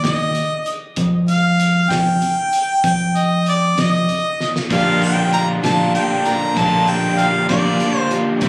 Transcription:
0.03 fingered electric bass D#2, harmonica D#5, kick, snare, closed hi-hat
0.35 closed hi-hat
0.66 closed hi-hat
0.96 fingered electric bass F2, kick, closed hi-hat
1.28 harmonica F5, closed hi-hat
1.60 closed hi-hat
1.90 fingered electric bass F2, harmonica G5, kick, snare, closed hi-hat
2.22 closed hi-hat
2.53 closed hi-hat
2.84 fingered electric bass F2, harmonica G5, kick, closed hi-hat
3.16 harmonica D#5, closed hi-hat
3.46 harmonica D5, closed hi-hat
3.78 fingered electric bass F2, harmonica D#5, snare, closed hi-hat
4.09 closed hi-hat
4.40 snare
4.56 snare
4.70 fingered electric bass A#1, steel-string acoustic guitar A#2 A#3 D4 F4 G4, overdriven electric guitar D3, tonewheel organ D4 F4 G4 A#4, harmonica F5, kick, closed hi-hat
5.02 steel-string acoustic guitar D4 F4 G4, harmonica G5, closed hi-hat
5.32 steel-string acoustic guitar A#3 D4 F4 G4, harmonica A#5, closed hi-hat
5.63 fingered electric bass A#1, steel-string acoustic guitar A#2 A#3 D4 F4 G4, overdriven electric guitar D3, harmonica A5, kick, snare, closed hi-hat
5.95 steel-string acoustic guitar A#3 D4 F4 G4, harmonica G5, closed hi-hat
6.25 steel-string acoustic guitar D4 F4 G4, harmonica A#5, closed hi-hat
6.56 fingered electric bass A#1, steel-string acoustic guitar A#2 A#3 D4 G4, overdriven electric guitar D3, harmonica A5, kick, closed hi-hat
6.60 steel-string acoustic guitar F4
6.88 steel-string acoustic guitar D4 F4 G4, harmonica G5, closed hi-hat
7.17 steel-string acoustic guitar A#3 D4 F4 G4, harmonica F5, closed hi-hat
7.49 fingered electric bass A#1, steel-string acoustic guitar A#2 A#3 D4 F4 G4, overdriven electric guitar D3, harmonica D5, kick, snare, closed hi-hat
7.79 steel-string acoustic guitar A#3 D4 F4 G4, closed hi-hat
7.99 harmonica C5
8.10 steel-string acoustic guitar D4 F4 G4, closed hi-hat
8.41 fingered electric bass C2, overdriven electric guitar C3 E3 G3, tonewheel organ E3 D4 G4 C5, steel-string acoustic guitar C4 E4 G4 D5, kick, closed hi-hat

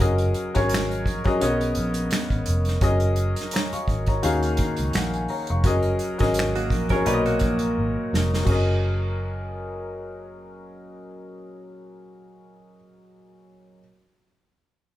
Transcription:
Already playing: grand piano F#5
0.00 fingered electric bass F#1, grand piano F#3 C#4 G#4 A#4 D#5, kick, closed hi-hat
0.18 closed hi-hat
0.34 closed hi-hat
0.54 fingered electric bass G#1, grand piano F#3 C#4 G#4 A#4 C#5, kick, closed hi-hat
0.69 closed hi-hat
0.74 finger snap, snare
0.91 closed hi-hat
1.06 fingered electric bass A#1, kick, closed hi-hat
1.24 grand piano F#3 C#4 G#4 A#4 D#5, kick, closed hi-hat
1.41 fingered electric bass B1, grand piano C#3 B3 A#4 C#5 D#5, closed hi-hat
1.61 closed hi-hat
1.75 fingered electric bass A#1, closed hi-hat
1.94 closed hi-hat
2.11 finger snap, snare, closed hi-hat
2.30 fingered electric bass G#1, kick, closed hi-hat
2.46 fingered electric bass F1, closed hi-hat
2.65 snare, closed hi-hat
2.81 fingered electric bass F#1, grand piano F#3 C#4 G#4 A#4 D#5, kick, closed hi-hat
3.00 closed hi-hat
3.16 closed hi-hat
3.36 snare, closed hi-hat
3.51 grand piano C#5 A#5, closed hi-hat
3.56 finger snap, snare
3.73 grand piano F5 C#6, muted fingered electric bass stroke, closed hi-hat
3.88 fingered electric bass G#1, kick, closed hi-hat
4.06 grand piano C#5 A#5, kick, closed hi-hat
4.23 fingered electric bass D#2, grand piano D#3 A#3 C#4 F#4 G#4 F5, closed hi-hat
4.43 closed hi-hat
4.57 muted fingered electric bass stroke, kick, closed hi-hat
4.77 fingered electric bass C#2, closed hi-hat
4.93 fingered electric bass A#1, grand piano A#4 F#5, finger snap, snare, closed hi-hat
5.14 grand piano G#5, closed hi-hat
5.28 grand piano C#5 A#5, open hi-hat
5.47 fingered electric bass F1, grand piano F5 C#6, closed hi-hat
5.64 fingered electric bass F#1, grand piano F#3 C#4 G#4 A#4 D#5, kick, closed hi-hat
5.83 closed hi-hat
5.99 closed hi-hat
6.18 fingered electric bass G#1, grand piano F#3 C#4 G#4 A#4 D#5, kick, snare, closed hi-hat
6.34 closed hi-hat
6.39 finger snap, snare
6.55 clean electric guitar A#3 F#4, closed hi-hat
6.70 fingered electric bass A#1, kick, closed hi-hat
6.89 grand piano F#3 C#4 G#4 A#4 C#5, clean electric guitar C#4 A#4, kick, closed hi-hat
7.05 fingered electric bass B1, grand piano A#2 F#3 A#4 C#5 D5, clean electric guitar D#4 B4, closed hi-hat
7.14 grand piano D#5
7.26 clean electric guitar A#3 F#4, closed hi-hat
7.39 fingered electric bass A#1, kick, closed hi-hat
7.59 closed hi-hat
7.78 fingered electric bass G#1
8.13 fingered electric bass F1, snare
8.34 snare
8.44 fingered electric bass F#1, grand piano F#3 C#4, kick, crash
8.48 grand piano G#4 A#4 D#5

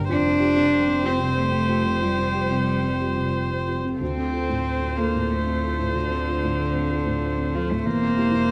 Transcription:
Already playing: double bass G1, felt piano G2 D3 A#3 D4 G4
0.09 double bass F1, felt piano F2, string section G3 G4 C5, cello D4, viola C5
0.25 felt piano C4
0.40 felt piano F4 G4
0.56 felt piano C3
0.87 felt piano C4
1.03 cello C4, felt piano F4 G4
1.19 felt piano C3
1.37 cello A3
1.52 felt piano C4
1.68 felt piano F4 G4
1.84 felt piano C3
2.02 felt piano F2, cello G3
2.18 felt piano C4
2.34 felt piano F4 G4
2.51 felt piano C3
2.84 felt piano C4
3.01 felt piano F4 G4
3.17 felt piano C3
3.51 felt piano C4
3.67 felt piano F4 G4
3.84 felt piano C3
4.00 felt piano D2, double bass D2, cello C4, string section F4 A4 C5, viola C5
4.17 felt piano C4
4.33 felt piano F4 A4
4.49 felt piano A2
4.82 felt piano C4
4.97 cello A#3, felt piano F4 A4
5.14 felt piano A2
5.30 cello A3
5.47 felt piano C4
5.63 felt piano F4 A4
5.79 felt piano A2
5.94 felt piano D2, cello D3
6.11 felt piano C4
6.28 felt piano F4 A4
6.44 felt piano A2
6.74 felt piano C4
6.91 felt piano F4 A4
7.06 felt piano A2
7.37 felt piano C4
7.54 cello F3, felt piano F4 A4
7.70 felt piano A2, cello A3
7.84 double bass E1, felt piano E2, string section G3 E4 C5, cello A#3, viola C5
8.02 felt piano C4
8.17 felt piano E4 G4
8.31 felt piano E3

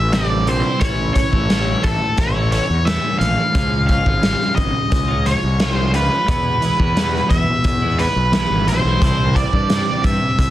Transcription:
Already playing: fingered electric bass A1, lead electric guitar E5
0.13 clean electric guitar C3 E3 G3 C4, lead electric guitar D5, snare, closed hi-hat
0.17 clean electric guitar E4
0.47 fingered electric bass A#1, clean electric guitar E3 G3 C4 E4, lead electric guitar C5, closed hi-hat
0.65 clean electric guitar G3 C4 E4
0.80 fingered electric bass A1, clean electric guitar A2 E3 A3 C#4, lead electric guitar C#5, kick, closed hi-hat
0.84 clean electric guitar E4
1.14 clean electric guitar E3 A3 C#4, lead electric guitar C#5, kick, closed hi-hat
1.19 clean electric guitar E4
1.32 fingered electric bass A1, clean electric guitar A3 C#4 E4, kick
1.49 clean electric guitar A2 E3 A3 C#4 E4, snare, closed hi-hat
1.83 fingered electric bass A1, lead electric guitar A4, kick, closed hi-hat
2.01 muted clean electric guitar stroke
2.17 fingered electric bass A1, lead electric guitar C#5, kick, closed hi-hat
2.35 clean electric guitar A3 C#4 E4
2.52 clean electric guitar E3 A3 C#4 E4, lead electric guitar C#5, closed hi-hat
2.69 fingered electric bass E2, muted clean electric guitar stroke
2.85 clean electric guitar A2 E3 A3 C#4, lead electric guitar E5, snare, closed hi-hat
3.19 fingered electric bass A#1, clean electric guitar E3 A3 C#4, lead electric guitar F5, closed hi-hat
3.38 clean electric guitar A3 C#4 E4
3.54 fingered electric bass C#2, clean electric guitar C#3 F3 G#3 C#4 F4, kick, closed hi-hat
3.87 clean electric guitar F3 G#3, lead electric guitar F5, kick, closed hi-hat
3.91 clean electric guitar C#4 F4
4.05 fingered electric bass G#1, clean electric guitar G#3 C#4 F4, kick
4.22 clean electric guitar C#3 F3 G#3 C#4 F4, snare, closed hi-hat
4.41 snare
4.55 fingered electric bass G#1, lead electric guitar D#5, kick, closed hi-hat
4.74 muted clean electric guitar stroke
4.92 fingered electric bass C#2, kick, closed hi-hat
5.08 clean electric guitar G#3 C#4 F4
5.25 clean electric guitar F3 G#3 C#4 F4, lead electric guitar C#5, closed hi-hat
5.43 fingered electric bass C2, muted clean electric guitar stroke
5.60 clean electric guitar F3 G#3 C#4 F4, snare, closed hi-hat
5.72 lead electric guitar C5
5.94 fingered electric bass C#2, clean electric guitar F3 G#3 C#4 F4, lead electric guitar B4, closed hi-hat
6.10 clean electric guitar G#3 C#4 F4
6.28 clean electric guitar E2 B2 E3 G#3 B3 E4, fingered electric bass E2, kick, closed hi-hat
6.61 clean electric guitar E3 G#3 B3 E4, closed hi-hat
6.79 fingered electric bass E2, clean electric guitar G#3 B3 E4, kick
6.96 clean electric guitar E2 B2 E3 G#3 B3 E4, snare, closed hi-hat
7.14 snare
7.30 fingered electric bass E2, lead electric guitar E5, kick, closed hi-hat
7.48 muted clean electric guitar stroke
7.64 fingered electric bass E2, kick, closed hi-hat
7.82 clean electric guitar E3 G#3 B3 E4
7.99 clean electric guitar E3 G#3 B3 E4, lead electric guitar B4, closed hi-hat
8.16 fingered electric bass B1, muted clean electric guitar stroke
8.32 clean electric guitar E2 B2 E3 G#3 E4, snare, closed hi-hat
8.50 fingered electric bass G#1
8.67 fingered electric bass A#1, clean electric guitar E3 G#3 E4, lead electric guitar C5, closed hi-hat
8.84 fingered electric bass B1, clean electric guitar E3 G#3 B3 E4
9.02 fingered electric bass C2, clean electric guitar C3 E3 G3 C4 E4, kick, closed hi-hat
9.36 clean electric guitar E3 G3 C4 E4, lead electric guitar D5, kick, closed hi-hat
9.52 fingered electric bass G2, clean electric guitar G3 C4 E4, kick
9.70 clean electric guitar C3 E3 G3 C4 E4, snare, closed hi-hat
10.04 fingered electric bass G2, lead electric guitar E5, kick, closed hi-hat
10.21 muted clean electric guitar stroke
10.38 fingered electric bass C2, kick, closed hi-hat

